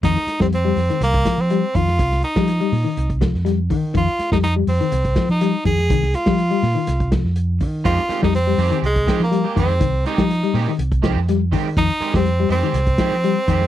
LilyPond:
<<
  \new Staff \with { instrumentName = "Tenor saxophone" } { \time 4/4 \key f \minor \tempo 4 = 123 ees'8. c'16 c'4 bes8. c'8. f'8~ | f'8 ees'2 r4. | f'8. ees'16 ees'8 c'4~ c'16 ees'8. aes'8~ | aes'8 f'2 r4. |
f'8. ees'16 c'4 aes8. bes8. c'8~ | c'8 ees'4. r2 | ees'8. c'8. c'2~ c'8 | }
  \new Staff \with { instrumentName = "Clean electric guitar" } { \time 4/4 \key f \minor r1 | r1 | r1 | r1 |
<ees aes c' g'>16 r16 <ees aes c' g'>16 r8. <ees aes c' g'>16 <aes c' g'>16 r8 <ees aes c' g'>16 r8 <aes g'>16 <ees aes c' g'>16 r16 | r8 <ees aes c' g'>16 r8. <ees aes c' g'>16 r8. <ees aes c' g'>16 r8. <ees aes c' g'>16 r16 | r8 <ees aes c' g'>16 r8. <ees aes c' g'>16 <aes c' g'>16 r8 <ees aes c' g'>16 r8. <ees aes c' g'>16 r16 | }
  \new Staff \with { instrumentName = "Clean electric guitar" } { \clef bass \time 4/4 \key f \minor ees8 r16 g8 g8 ees8 r16 f8 g8 ees8 | r8. g8 g8 ees8 r16 f8 g8 ees8 | ees8 r16 g8 g8 ees8 r16 f8 g8 ees8 | ees8 r16 g8 g8 ees8 r16 f8 r4 |
r8. g8 g8 ees8 r16 f8 g8 ees8 | ees8 r16 g8 g8 ees8 r16 f8 g8 ees8 | ees8 r16 g8 g8 ees8 r16 f8 g8 ees8 | }
  \new Staff \with { instrumentName = "Fingered electric bass" } { \clef bass \time 4/4 \key f \minor f,16 r8 f,8. f,16 r16 c,8 r16 f8 r16 f,8 | c,8 r16 f8 r16 bes,16 r16 c,8. f,8. ees8 | f,16 r8 f,8. f,16 r16 c,8 r16 f8 r16 f,8 | c,8 r16 f8 r16 bes,16 r16 c,8. f,8. ees8 |
f,16 r8 f,8. f,16 r16 c,8 r16 f8 r16 f,8 | c,8 r16 f8 r16 bes,16 r16 c,8. f,8. ees8 | f,16 r8 f,8. f,16 r16 c,8 r16 f8 r16 f,8 | }
  \new DrumStaff \with { instrumentName = "Drums" } \drummode { \time 4/4 <hh bd sn>16 <hh sn>16 <hh sn>16 <bd sn>16 hh8 <hho sn>16 <hh sn>16 <hh sn>16 <hh bd>16 <hh bd sn>16 <hh sn>16 hh8 <hh bd>16 sn16 | <hh bd>16 sn16 hh16 <hh bd sn>16 <hh sn>16 hh16 hho8 hh16 <hh bd>16 <hh bd sn>16 sn16 <hh sn>8 <hho bd>8 | <hh bd>16 hh16 <hh sn>16 <bd sn>16 hh8 hho16 hh16 hh16 <hh bd>16 <hh bd sn>16 <hh sn>16 <hh sn>8 <hh bd>16 sn16 | <hh bd>16 sn16 <hh sn>16 <hh bd sn>16 hh16 hh16 <hho sn>8 <hh sn>16 <hh bd>16 <hh bd sn>16 sn16 hh8 <hho bd>8 |
<hh bd>16 hh16 <hh sn>16 <bd sn>16 hh8 hho16 hh16 hh16 <hh bd>16 <hh bd sn>16 <hh sn>16 hh8 <hh bd>8 | <hh bd>8 <hh sn>16 <hh bd sn>16 <hh sn>16 hh16 hho8 hh16 <hh bd>16 <hh bd sn>16 sn16 <hh sn>8 <hho bd>8 | <hh bd sn>16 hh16 hh16 <bd sn>16 <hh sn>8 hho16 hh16 <hh sn>16 <hh bd>16 <hh bd sn>16 <hh sn>16 hh8 <hh bd sn>16 sn16 | }
>>